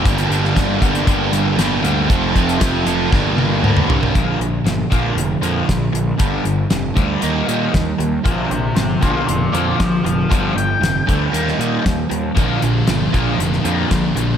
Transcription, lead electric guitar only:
\new Staff \with { instrumentName = "Lead electric guitar" } { \time 4/4 \key bes \major \tempo 4 = 117 r1 | r1 | r1 | r1 |
<g' c''>8 <g' c''>8 <g' c''>8 <bes' d''>8 <bes' d''>8 <bes' d''>8 <c'' f''>8 <c'' f''>8 | <c'' f''>8 g''4 r2 r8 | r1 | }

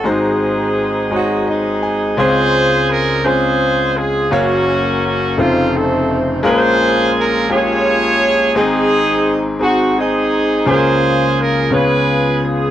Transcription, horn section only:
\new Staff \with { instrumentName = "Horn section" } { \time 6/8 \key des \major \tempo 4. = 57 << { aes'4. ges'8 aes'4 | c''4 bes'8 c''4 aes'8 | ges'4 ges'8 f'8 a'8 r8 | c''4 bes'8 des''4. |
aes'4 r8 ges'8 aes'4 | c''4 bes'8 ces''4 aes'8 | } \\ { <c' ees'>2 <c' ees'>4 | <f' aes'>4. <f' aes'>4. | <bes des'>4. <a c'>4. | <f' aes'>4. <f' aes'>4. |
<c' ees'>4. r8 <c' ees'>4 | <f' aes'>4. <f' aes'>4. | } >> }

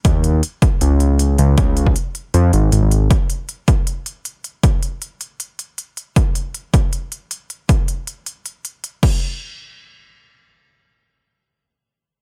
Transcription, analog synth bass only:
\new Staff \with { instrumentName = "Analog synth bass" } { \clef bass \time 4/4 \key des \lydian \tempo 4 = 157 ees,4 r4 des,4. des,8 | r2 f,8 aes,,8 aes,,16 aes,,8. | r1 | r1 |
r1 | r1 | r1 | r1 | }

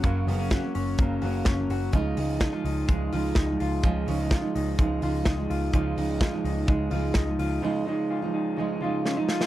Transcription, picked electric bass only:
\new Staff \with { instrumentName = "Picked electric bass" } { \clef bass \time 4/4 \key cis \mixolydian \tempo 4 = 126 fis,,8 fis,,8. r16 fis,,8 fis,,8 fis,,8 fis,,8 fis,,8 | cis,8 cis,8. r16 cis,8 cis,8 cis,8 cis,8 cis,8 | cis,8 cis,8. r16 cis,8 cis,8 cis,8 cis,8 cis,8 | cis,8 cis,8. r16 cis,8 cis,8 cis,8 cis,8 cis,8 |
r1 | }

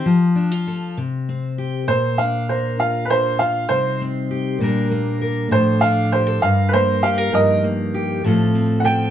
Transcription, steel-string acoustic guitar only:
\new Staff \with { instrumentName = "Steel-string acoustic guitar" } { \time 6/8 \key c \dorian \tempo 4. = 66 << { r8 d'16 f'16 a'8 r8 c'8 g'8 | r8 d'8 bes'8 f'8 d'8 f'8 | r8 c'8 g'8 <g bes d' bes'>8 bes8 bes'8 | r8 d'8 g'16 a'16 r8 bes8 g'16 bes'16 |
r8 bes8 g'8 <f c' f' a'>8 c'8 a'8 | } \\ { f4. c4. | bes,2. | c4. bes,4. | a,4. g,4. |
g,4. a,4. | } >> }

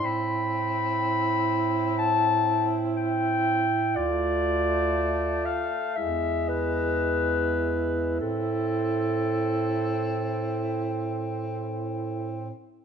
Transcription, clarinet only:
\new Staff \with { instrumentName = "Clarinet" } { \time 4/4 \key a \minor \tempo 4 = 58 b''2 a''8 r8 g''4 | d''4. f''8 e''8 b'4. | a'2.~ a'8 r8 | }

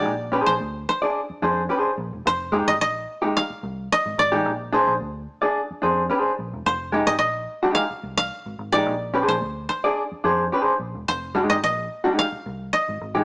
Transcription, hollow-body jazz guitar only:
\new Staff \with { instrumentName = "Hollow-body jazz guitar" } { \time 4/4 \key f \dorian \tempo 4 = 109 r8 <d' aes' c''>16 r4 <d' aes' d''>16 r8 <d' aes' c''>16 r16 <d' aes' c''>16 r8. | r8 <aes ees' g'>16 r4 <aes ees' g'>16 r4. r16 <aes ees' g'>16 | r8 <d' aes' c''>16 r4 <d' aes' d''>16 r8 <d' aes' c''>16 r16 <d' aes' c''>16 r8. | r8 <aes ees' g'>16 r4 <aes ees' g'>16 r4. r16 <aes ees' g'>16 |
r8 <d' aes' c''>16 r4 <d' aes' d''>16 r8 <d' aes' c''>16 r16 <d' aes' c''>16 r8. | r8 <aes ees' g'>16 r4 <aes ees' g'>16 r4. r16 <aes ees' g'>16 | }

